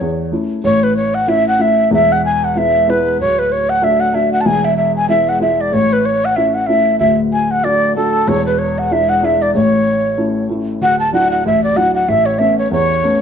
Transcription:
Already playing: flute C#5
0.01 upright piano E2
0.32 upright piano A3 C#4 E4
0.64 upright piano A1 A2, flute C#5
0.83 flute B4
0.97 flute C#5
1.15 flute F#5
1.27 upright piano A3 C#4 E4, flute E5
1.48 flute F#5
1.59 upright piano A3 C#4 E4, flute E5
1.91 upright piano E1 E2, flute E5
2.12 flute F#5
2.25 flute G#5
2.44 flute F#5
2.55 upright piano G#3 B3 E4, flute E5
2.88 upright piano G#3 B3 E4, flute B4
3.19 upright piano D1 D2, flute C#5
3.39 flute B4
3.52 flute C#5
3.69 flute F#5
3.82 upright piano A3 D4 F#4, flute E5
4.00 flute F#5
4.14 upright piano A3 D4 F#4, flute E5
4.33 flute F#5
4.41 flute A5
4.45 upright piano E1 E2, flute G#5
4.65 flute E5
4.77 flute E5
4.96 flute G#5
5.09 upright piano G#3 B3 E4, flute E5
5.29 flute F#5
5.40 upright piano G#3 B3 E4, flute E5
5.61 flute D5
5.72 upright piano A1 A2, flute C#5
5.93 flute B4
6.05 flute C#5
6.25 flute F#5
6.36 upright piano A3 C#4 E4, flute E5
6.54 flute F#5
6.67 upright piano A3 C#4 E4, flute E5
6.99 upright piano D1 D2, flute E5
7.33 flute G#5
7.51 flute F#5
7.64 upright piano A3 D4 F#4, flute D5
7.96 upright piano A3 D4 F#4, flute A4
8.28 upright piano E1 E2, flute C#5
8.46 flute B4
8.59 flute C#5
8.79 flute F#5
8.91 upright piano G#3 D4 E4, flute E5
9.09 flute F#5
9.22 upright piano G#3 D4 E4, flute E5
9.42 flute D5
9.55 upright piano A1 A2, flute C#5
10.18 upright piano A3 C#4 E4
10.49 upright piano A3 C#4 E4
10.81 upright piano D1 D2, flute F#5
10.99 flute A5
11.13 upright piano F#3 D4 E4, flute F#5
11.31 flute F#5
11.46 upright piano A1, flute E5
11.64 flute D5
11.76 upright piano F#3 D4 E4, flute F#5
11.95 flute F#5
12.08 upright piano A1 A2, flute E5
12.26 flute C#5
12.39 upright piano A3 B3 C#4, flute E5
12.58 flute C#5
12.71 upright piano E2, flute C#5
13.04 upright piano A3 B3 C#4

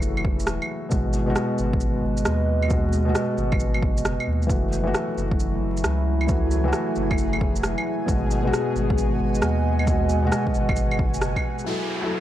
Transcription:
Already playing: sub bass F#1, felt piano E3 A3 F#4, ambient pad F#3 E4 G#4 A4 F#5
0.02 shaker
0.17 claves
0.25 kick
0.39 sub bass E1, shaker
0.47 cross-stick, shaker
0.62 claves
0.89 sub bass G#1, felt piano B2 G#3 F#4, ambient pad G#3, kick, shaker
1.13 ambient pad B4, shaker
1.26 felt piano B2 G#3 F#4
1.36 cross-stick, shaker
1.42 ambient pad D#5
1.58 sub bass G#1, shaker
1.73 kick
1.80 shaker
2.04 sub bass G#1
2.17 shaker
2.25 sub bass D#2, cross-stick, shaker
2.62 claves
2.68 felt piano B2 G#3, kick, shaker
2.72 felt piano F#4
2.93 shaker
3.05 felt piano B2 G#3
3.09 felt piano F#4
3.15 cross-stick, shaker
3.37 sub bass G#1, shaker
3.52 kick, claves
3.60 shaker
3.74 claves
3.83 kick
3.97 sub bass F#1, shaker
4.05 cross-stick, shaker
4.20 claves
4.27 sub bass D#2
4.42 shaker
4.47 sub bass F#1, felt piano E3 A3, ambient pad F#3, synth texture G#4 G#5, kick, shaker
4.51 felt piano F#4
4.66 ambient pad A3 E4
4.73 shaker
4.84 felt piano E3 A3 F#4
4.92 ambient pad G#5, cross-stick, shaker
5.17 sub bass F#1, shaker
5.31 kick
5.40 shaker
5.52 ambient pad F#5
5.62 sub bass F#1
5.77 shaker
5.84 sub bass C#2, cross-stick, shaker
6.21 claves
6.27 felt piano E3 A3, kick, shaker
6.31 felt piano F#4
6.51 shaker
6.64 felt piano E3 A3 F#4
6.73 cross-stick, shaker
6.96 sub bass F#1, shaker
7.11 kick, claves
7.18 shaker
7.33 claves
7.41 kick
7.56 sub bass E1, shaker
7.63 cross-stick, shaker
7.78 claves
8.06 sub bass G#1, felt piano B2 G#3 F#4, ambient pad G#3, kick, shaker
8.31 shaker
8.43 felt piano B2 G#3
8.47 felt piano F#4
8.51 ambient pad D#5, cross-stick, shaker
8.55 ambient pad B4
8.75 sub bass G#1, shaker
8.90 kick
8.98 shaker
9.20 sub bass G#1
9.35 shaker
9.42 sub bass D#2, cross-stick, shaker
9.79 claves
9.85 felt piano B2 G#3, kick, shaker
9.90 felt piano F#4
10.09 shaker
10.23 felt piano B2 G#3 F#4
10.32 cross-stick, shaker
10.47 kick
10.54 sub bass G#1, shaker
10.69 kick, claves
10.76 shaker
10.91 claves
10.99 kick
11.14 sub bass F#1, shaker
11.21 cross-stick, shaker
11.36 kick, claves
11.59 shaker
11.64 felt piano F#3 E4, ambient pad F#3, downlifter
11.68 felt piano A4
11.91 ambient pad E4
12.01 felt piano F#3 E4, ambient pad A4
12.06 felt piano A4

